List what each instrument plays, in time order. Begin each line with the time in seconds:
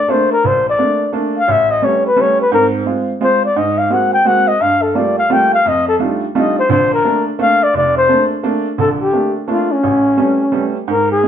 Already playing: flugelhorn D5
0.08 upright piano A3 A#3 D4, flugelhorn C5
0.32 flugelhorn A#4
0.44 upright piano A#1, flugelhorn C5
0.69 flugelhorn D5
0.79 upright piano A3 A#3 D4
1.13 upright piano A3 A#3 D4
1.38 flugelhorn F5
1.48 upright piano A1, flugelhorn E5
1.71 flugelhorn D#5
1.82 upright piano G3 A3 B3 C#4, flugelhorn C#5
2.07 flugelhorn B4
2.16 upright piano G3 A3 B3 C#4
2.21 flugelhorn C#5
2.41 flugelhorn B4
2.52 upright piano G#2 C4, flugelhorn A#4
2.86 upright piano G#3 C4 F4
3.21 upright piano G#3 C4 F4, flugelhorn C5
3.45 flugelhorn D5
3.56 upright piano G#2, flugelhorn D#5
3.78 flugelhorn F5
3.90 upright piano G#3 A#3 C4 F#4, flugelhorn F#5
4.13 flugelhorn G5
4.25 upright piano G#3 A#3 C4 F#4, flugelhorn F#5
4.48 flugelhorn D#5
4.60 upright piano G2, flugelhorn F5
4.82 flugelhorn A4
4.95 upright piano G3 A3 A#3 F4, flugelhorn D5
5.19 flugelhorn F5
5.30 upright piano G3 A3 A#3 F4, flugelhorn G5
5.54 flugelhorn F5
5.65 upright piano F2, flugelhorn D#5
5.88 flugelhorn A4
6.00 upright piano G3 A3 D4 D#4 F4
6.35 upright piano G3 A3 D4 D#4 F4, flugelhorn D#5
6.59 flugelhorn C5
6.69 upright piano A#1 D3, flugelhorn C5
6.94 flugelhorn A#4
7.04 upright piano A3 A#3 D4
7.39 upright piano A3 A#3 D4, flugelhorn F5
7.63 flugelhorn D5
7.74 upright piano F1, flugelhorn D5
7.97 flugelhorn C5
8.09 upright piano A3 A#3 D4
8.43 upright piano A3 A#3 D4
8.78 upright piano A#1 D3, flugelhorn A4
9.02 flugelhorn G4
9.13 upright piano A3 A#3 D4
9.48 upright piano A3 A#3 D4, flugelhorn F4
9.72 flugelhorn C#4
9.84 upright piano A1
10.17 upright piano G3 A3 B3 C#4
10.52 upright piano G3 A3 B3 C#4
10.88 upright piano G#2, flugelhorn A#4
11.12 flugelhorn G#4
11.23 upright piano F3 G#3 C4